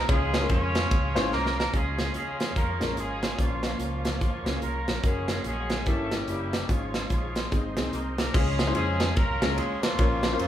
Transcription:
Already playing: G#4
0.08 C#2 C#3 G#3 C#4 F4 G#4 C#5 F5, kick, ride bell
0.34 snare, ride bell
0.40 G#3 C#4 F4 G#4 A#4
0.49 F2 C#4 F4 G#4 C#5, kick, ride bell
0.75 snare, ride bell
0.91 C#2, kick, ride bell
1.15 G#1 G#3 C#4 E4 G#4 C5, snare, ride bell
1.20 F4
1.31 C2 A#3 A#4, snare
1.46 snare
1.58 A#3 A#4, snare
1.73 C#2 C#3 F3 G#3 C#4 F4 G#4 C#5 F5 C#6, kick, closed hi-hat
1.99 snare, closed hi-hat
2.14 D#2 G#3 C#4 F4 G#4, closed hi-hat
2.40 snare, closed hi-hat
2.56 F2 A#3 C#4 F4 A#4, kick, closed hi-hat
2.79 A#1 G#3 C#4 F4 A#4, snare, closed hi-hat
2.96 G#1 G#3 C#4 F4 G#4, closed hi-hat
3.23 snare, closed hi-hat
3.37 A#1 A#2 F3 A#3 C#4 F4 A#4, kick, closed hi-hat
3.63 snare, closed hi-hat
3.79 C#2 F3 A#3 C#4 F4, closed hi-hat
4.05 snare, closed hi-hat
4.21 D#2, kick, closed hi-hat
4.45 C#2 G#3 A#3 C#4 F4 G4 G#4, snare, closed hi-hat
4.51 G#4
4.62 C2 A#3 C#4 F4 A#4, closed hi-hat
4.88 A#1, snare, closed hi-hat
5.03 F#1 F#3 G#3 A#3 C#4 F#4 G#4 A#4 F#5 C#6, kick, closed hi-hat
5.28 G#3 G#4, snare, closed hi-hat
5.44 A#1 G#3 C#4 G#4, closed hi-hat
5.70 snare, closed hi-hat
5.85 G1 G2 G3 A3 A#3 C#4 E4 G4 A4 E5 G5 C#6, kick, closed hi-hat
6.10 A#3 C#4 E4 G4, snare, closed hi-hat
6.28 F#1 G3 A#3 E4 G4, closed hi-hat
6.53 snare, closed hi-hat
6.68 G#1 G#2 F3 G#3 C#4 F4 G#4 C#5 F5 C#6, kick, closed hi-hat
6.94 snare, closed hi-hat
7.10 A#1 F3 G#3 C#4 F4, kick, closed hi-hat
7.36 snare, closed hi-hat
7.51 G#1 G#2 D#3 G#3 C4 D#4 G#4 C5 D#5 C6, kick, closed hi-hat
7.76 C2 G#3 C4 D#4 G#4, snare, closed hi-hat
7.92 C2 A#3 D#4 A#4, closed hi-hat
8.17 A#3 A#4, snare, closed hi-hat
8.33 C#2 C#3 G#3 C#4 F4 G#4 C#5, kick, crash
8.59 snare, ride bell
8.67 G#3 C#4 E4 G#4 C5
8.73 F2 G#3 C#4 F4 G#4, ride bell
9.00 snare, ride bell
9.15 C2 A#3 C#4 F4 A#4, kick, ride bell
9.42 C#2 G#3 C#4 F4 G#4 C#5, snare, ride bell
9.56 D#2 G#3 G#4, ride bell
9.82 F3 A#3 C#4 F4, snare, ride bell
9.98 A#1 A#2 A#3 C#4 F4 A#4 C#5, kick, ride bell
10.23 snare, ride bell
10.32 A#3 C#4 F4 A#4 C5
10.39 F2 F3 A#3 C#4 F4, ride bell

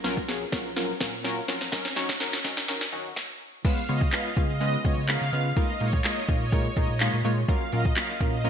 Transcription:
0.04 A#1 F#3 C#4 F4 A#4, snare, closed hi-hat
0.17 kick
0.28 F#3 C#4 F4 G#4, snare, closed hi-hat
0.52 A#1 F#3 C#4 F4 A#4, kick, snare, closed hi-hat
0.76 F#3 C#4 F4 A#4, snare, closed hi-hat
1.00 A#2 F#3 C#4 F4 A#4, kick, snare, closed hi-hat
1.24 F#3 C#4 F4 A#4, snare, closed hi-hat
1.48 A#1 F#3 C#4 F4 A#4, snare, open hi-hat
1.61 snare
1.72 F#3 C#4 D#4 A#4, kick, snare, closed hi-hat
1.85 snare
1.96 D#2 F#3 C#4 D#4 C#5, snare, closed hi-hat
2.09 kick, snare
2.20 F#3 C#4 D#4 A#4, snare, closed hi-hat
2.33 snare, closed hi-hat
2.44 D#2 F#3 C#4 D#4 A#4, kick, snare, closed hi-hat
2.57 snare
2.68 F#3 C#4 D#4 A#4, snare, closed hi-hat
2.81 snare, closed hi-hat
2.92 D#3 F#3 C#4 D#4 F#4, closed hi-hat
3.16 kick, snare
3.65 G#3 B3 C#4 F4 B4 F5, kick, closed hi-hat, crash
3.89 C#3 G#3 B3 C#4 F4 C#5 D#5, closed hi-hat
4.01 kick
4.12 G#3 B3 C#4 F4 B4 F5, clap, closed hi-hat
4.26 closed hi-hat
4.36 C#3 G#3 B3 C#4 F4 G#4, kick, closed hi-hat
4.50 D#5
4.60 G#3 B3 C#4 F4 B4, closed hi-hat
4.74 closed hi-hat
4.84 C#3 G#3 B3 C#4 F4 C#5, kick, closed hi-hat
4.97 C#3
5.08 G#3 B3 C#4 F4 A#4 F5, clap, closed hi-hat
5.21 C#3
5.33 C#3 G#3 B3 C#4 F4 B4, closed hi-hat
5.56 G#3 A#3 D#4 F4 A#4 D#5, kick, closed hi-hat
5.80 A#2 G#3 A#3 D#4 F4 A#4 C#5, closed hi-hat
5.93 kick
6.04 G#3 A#3 D#4 F4 A#4 D#5, clap, closed hi-hat
6.17 closed hi-hat
6.28 A#2 G#3 A#3 D#4 F4 A#4, kick, closed hi-hat
6.42 C#5
6.52 G#3 A#3 D#4 F4 A#4, kick, closed hi-hat
6.65 closed hi-hat
6.77 A#2 G#3 A#3 D#4 F4 A#4 D#5, kick, closed hi-hat
6.89 A#2
7.00 G#3 A#3 D#4 F4 C#5, clap, closed hi-hat
7.13 A#2
7.24 A#2 G#3 A#3 D#4 F4 C#5, closed hi-hat
7.48 F#3 A#3 C#4 F4 A#4 F5, kick, closed hi-hat
7.72 A#2 F#3 A#3 C#4 F4 A#4 D#5, closed hi-hat
7.85 kick
7.96 F#3 A#3 C#4 F4 A#4 F5, clap, closed hi-hat
8.10 closed hi-hat
8.20 A#2 F#3 A#3 C#4 F4 A#4, kick, closed hi-hat
8.33 D#5
8.44 F#3 A#3 C#4 F4 A#4, closed hi-hat

